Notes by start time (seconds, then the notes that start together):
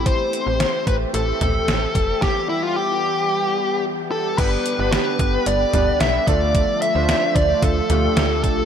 Already playing: A1 E3 A3 C4 G4
0.06 C5, kick, closed hi-hat
0.33 closed hi-hat
0.47 A1
0.60 snare, closed hi-hat
0.87 A1 B4, kick, closed hi-hat
1.14 A1 A4, closed hi-hat
1.41 A1, closed hi-hat, mid tom
1.68 A1, snare, closed hi-hat
1.95 F1, kick, closed hi-hat
2.22 G3 B3 G4, kick, snare
2.49 E4
2.63 F4
2.76 G4
4.11 A4
4.38 G1 D3 G3 B3 D4 G4 B4, kick, closed hi-hat, crash
4.66 closed hi-hat
4.79 G1 B3 D4 G4 B4
4.92 B4, snare, closed hi-hat
5.19 G1, kick, closed hi-hat
5.46 G1 D5, closed hi-hat
5.73 G1 B3 D4 G4 B4, closed hi-hat, mid tom
6.00 B1 E5, snare, closed hi-hat
6.27 D2 F3 A3 D4 F4 A4 D5, kick, closed hi-hat
6.55 kick, closed hi-hat
6.82 E5, closed hi-hat
6.95 D2 A3 D4 F4 C5
7.09 snare, closed hi-hat
7.36 D2 D5, kick, closed hi-hat
7.62 D2 A4, kick, closed hi-hat
7.90 D2 A3 D4 F4 G4, closed hi-hat, mid tom
8.17 D2, snare, closed hi-hat
8.44 B1 A4, kick, closed hi-hat